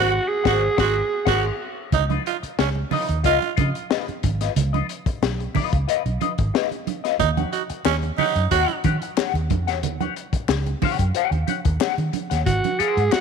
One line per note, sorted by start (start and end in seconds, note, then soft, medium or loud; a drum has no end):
0.00 0.18 G#1 loud
0.00 0.13 F#4 loud
0.00 0.30 F#4 loud
0.00 0.18 A#4 loud
0.00 0.18 C5 loud
0.00 0.17 F#5 loud
0.28 1.60 G#4 loud
0.44 0.67 G#1 medium
0.44 0.63 F#4 medium
0.44 0.68 A#4 medium
0.44 0.67 C5 loud
0.44 0.66 F#5 medium
0.44 kick loud
0.44 snare loud
0.77 1.00 G#1 loud
0.77 0.96 F#4 loud
0.77 1.01 A#4 loud
0.77 1.00 C5 medium
0.77 1.00 F#5 medium
0.77 kick loud
0.77 snare loud
1.25 1.49 G#1 medium
1.25 1.45 F#4 loud
1.25 1.50 A#4 medium
1.25 1.49 C5 medium
1.25 1.49 F#5 medium
1.25 kick loud
1.25 snare loud
1.25 crash medium
1.92 2.17 C#2 loud
1.92 2.04 D#4 loud
1.92 muted clean electric guitar stroke soft
1.92 kick loud
1.92 closed hi-hat medium
1.92 low conga medium
2.09 2.23 F4 medium
2.09 2.23 B4 medium
2.09 2.22 D#5 medium
2.09 closed hi-hat soft
2.09 high conga medium
2.26 2.37 F4 medium
2.26 muted clean electric guitar stroke soft
2.26 closed hi-hat medium
2.43 muted clean electric guitar stroke medium
2.43 muted fingered electric bass stroke soft
2.43 closed hi-hat soft
2.58 2.83 C#2 medium
2.58 2.69 C#4 medium
2.58 muted clean electric guitar stroke soft
2.58 snare loud
2.75 muted clean electric guitar stroke soft
2.75 muted conga soft
2.91 3.18 D#4 medium
2.91 3.05 F4 medium
2.91 3.06 B4 medium
2.91 3.07 D#5 medium
2.91 open hi-hat medium
2.91 high conga medium
2.91 low conga medium
3.08 3.25 D#2 medium
3.08 muted clean electric guitar stroke soft
3.08 closed hi-hat medium
3.24 3.37 C#2 medium
3.24 3.38 F4 medium
3.24 3.51 F4 loud
3.24 3.39 B4 medium
3.24 3.39 D#5 loud
3.24 kick medium
3.24 closed hi-hat medium
3.24 muted conga soft
3.41 muted clean electric guitar stroke soft
3.41 closed hi-hat soft
3.41 muted conga soft
3.56 3.71 C#3 medium
3.56 3.68 F4 medium
3.56 3.68 B4 medium
3.56 3.69 D#5 medium
3.56 kick loud
3.56 closed hi-hat medium
3.56 high conga medium
3.74 muted clean electric guitar stroke medium
3.74 closed hi-hat medium
3.90 4.04 F4 medium
3.90 4.05 B4 medium
3.90 4.05 D#5 medium
3.90 snare loud
4.08 muted fingered electric bass stroke soft
4.08 closed hi-hat soft
4.08 muted conga soft
4.23 4.48 G#1 medium
4.23 muted clean electric guitar stroke soft
4.23 kick loud
4.23 closed hi-hat medium
4.23 high conga medium
4.41 4.52 F4 medium
4.41 4.51 B4 medium
4.41 4.51 D#5 medium
4.41 snare soft
4.41 closed hi-hat medium
4.56 4.81 C#2 loud
4.56 muted clean electric guitar stroke soft
4.56 closed hi-hat medium
4.56 low conga medium
4.73 4.87 F4 medium
4.73 4.86 B4 medium
4.73 4.86 D#5 medium
4.73 closed hi-hat soft
4.73 high conga medium
4.89 muted clean electric guitar stroke soft
4.89 closed hi-hat medium
5.06 muted fingered electric bass stroke medium
5.06 muted clean electric guitar stroke medium
5.06 kick medium
5.06 closed hi-hat medium
5.22 5.46 B1 medium
5.22 muted clean electric guitar stroke soft
5.22 snare loud
5.22 muted conga soft
5.39 muted clean electric guitar stroke soft
5.39 closed hi-hat soft
5.55 5.75 F4 medium
5.55 5.73 B4 medium
5.55 5.71 D#5 medium
5.55 kick loud
5.55 open hi-hat medium
5.55 high conga medium
5.55 low conga medium
5.73 5.84 C#2 medium
5.73 muted clean electric guitar stroke soft
5.73 kick loud
5.73 closed hi-hat medium
5.88 6.02 F4 medium
5.88 6.02 B4 medium
5.88 6.03 D#5 loud
5.88 closed hi-hat loud
6.06 6.17 B1 medium
6.06 muted clean electric guitar stroke soft
6.06 closed hi-hat soft
6.06 muted conga soft
6.20 6.32 F4 medium
6.20 6.32 B4 medium
6.20 6.33 D#5 medium
6.20 closed hi-hat medium
6.20 high conga medium
6.38 6.50 G#1 medium
6.38 muted clean electric guitar stroke medium
6.38 kick loud
6.38 closed hi-hat soft
6.54 6.68 F4 medium
6.54 6.69 B4 medium
6.54 6.69 D#5 medium
6.54 snare loud
6.71 closed hi-hat soft
6.71 muted conga soft
6.87 muted clean electric guitar stroke soft
6.87 closed hi-hat medium
6.87 high conga medium
7.04 7.15 F4 medium
7.04 7.14 B4 medium
7.04 7.14 D#5 medium
7.04 snare soft
7.04 closed hi-hat medium
7.19 7.44 D#2 medium
7.19 7.30 D#4 loud
7.19 kick loud
7.19 closed hi-hat medium
7.19 muted conga soft
7.19 low conga medium
7.37 7.51 G4 medium
7.37 7.50 C#5 medium
7.37 7.50 F#5 medium
7.37 closed hi-hat soft
7.37 muted conga soft
7.37 high conga medium
7.52 7.63 F#4 medium
7.52 muted clean electric guitar stroke soft
7.52 closed hi-hat medium
7.70 muted clean electric guitar stroke medium
7.70 muted fingered electric bass stroke soft
7.70 closed hi-hat medium
7.85 8.10 D#2 loud
7.85 7.96 C#4 loud
7.85 muted clean electric guitar stroke medium
7.85 snare loud
7.85 clap medium
7.85 muted conga soft
8.02 muted clean electric guitar stroke soft
8.02 closed hi-hat soft
8.02 muted conga soft
8.18 8.44 D#4 loud
8.18 8.33 G4 loud
8.18 8.33 C#5 medium
8.18 8.34 F#5 medium
8.18 open hi-hat medium
8.18 high conga medium
8.18 low conga medium
8.36 8.47 F#2 medium
8.36 closed hi-hat medium
8.51 8.64 D#2 loud
8.51 8.78 F#4 loud
8.51 8.66 G4 medium
8.51 8.66 C#5 medium
8.51 8.67 F#5 loud
8.51 kick medium
8.51 closed hi-hat medium
8.51 muted conga soft
8.68 muted clean electric guitar stroke soft
8.68 closed hi-hat soft
8.68 muted conga soft
8.84 8.97 D#3 loud
8.84 8.96 G4 medium
8.84 8.96 C#5 medium
8.84 8.97 F#5 medium
8.84 kick medium
8.84 closed hi-hat medium
8.84 high conga medium
9.02 muted clean electric guitar stroke medium
9.02 closed hi-hat medium
9.17 9.32 G4 medium
9.17 9.32 C#5 medium
9.17 9.33 F#5 medium
9.17 snare loud
9.17 clap loud
9.17 muted conga soft
9.34 9.51 D#2 medium
9.34 closed hi-hat soft
9.34 muted conga soft
9.50 9.67 F2 loud
9.50 muted clean electric guitar stroke soft
9.50 kick loud
9.50 closed hi-hat medium
9.50 high conga medium
9.67 9.82 E2 loud
9.67 9.79 G4 medium
9.67 9.78 C#5 medium
9.67 9.77 F#5 medium
9.67 snare soft
9.67 closed hi-hat medium
9.82 10.07 D#2 loud
9.82 muted clean electric guitar stroke soft
9.82 closed hi-hat medium
9.82 muted conga soft
9.82 low conga medium
10.00 10.14 G4 medium
10.00 10.14 C#5 medium
10.00 10.13 F#5 medium
10.00 closed hi-hat soft
10.00 high conga medium
10.16 muted clean electric guitar stroke soft
10.16 closed hi-hat medium
10.33 muted fingered electric bass stroke medium
10.33 muted clean electric guitar stroke soft
10.33 kick loud
10.33 closed hi-hat medium
10.48 10.73 C#2 loud
10.48 muted clean electric guitar stroke medium
10.48 snare loud
10.48 clap medium
10.48 muted conga soft
10.66 muted clean electric guitar stroke soft
10.66 closed hi-hat soft
10.66 muted conga soft
10.82 11.03 G4 medium
10.82 11.00 C#5 loud
10.82 10.98 F#5 loud
10.82 kick loud
10.82 open hi-hat medium
10.82 high conga medium
10.82 low conga medium
10.99 11.11 F#2 medium
10.99 muted clean electric guitar stroke soft
10.99 kick medium
10.99 closed hi-hat medium
11.15 11.36 G4 medium
11.15 11.33 C#5 medium
11.15 11.31 F#5 loud
11.15 closed hi-hat medium
11.31 11.43 D#2 medium
11.31 muted clean electric guitar stroke medium
11.31 closed hi-hat soft
11.31 muted conga soft
11.47 11.59 G4 medium
11.47 11.59 C#5 medium
11.47 11.60 F#5 medium
11.47 closed hi-hat medium
11.47 high conga medium
11.65 11.77 D#2 medium
11.65 muted clean electric guitar stroke medium
11.65 kick loud
11.65 closed hi-hat medium
11.80 11.95 G4 medium
11.80 11.95 C#5 medium
11.80 11.96 F#5 medium
11.80 muted fingered electric bass stroke soft
11.80 snare loud
11.80 clap loud
11.80 muted conga soft
11.98 12.09 D#3 medium
11.98 closed hi-hat soft
11.98 muted conga soft
12.13 muted clean electric guitar stroke soft
12.13 closed hi-hat medium
12.13 high conga medium
12.30 12.43 D#2 medium
12.30 12.42 G4 medium
12.30 12.41 C#5 medium
12.30 12.41 F#5 medium
12.30 snare soft
12.30 closed hi-hat medium
12.46 12.59 G#1 medium
12.46 12.81 F#4 medium
12.46 kick medium
12.46 closed hi-hat medium
12.46 low conga medium
12.64 closed hi-hat soft
12.64 muted conga soft
12.64 high conga medium
12.79 13.13 G#4 loud
12.79 13.00 A#4 medium
12.79 13.01 C5 loud
12.79 13.01 F#5 medium
12.79 muted fingered electric bass stroke soft
12.79 closed hi-hat medium
12.97 13.09 G#2 loud
12.97 closed hi-hat soft
13.12 13.21 F#4 loud
13.12 muted clean electric guitar stroke soft
13.12 muted fingered electric bass stroke soft
13.12 snare medium
13.12 clap medium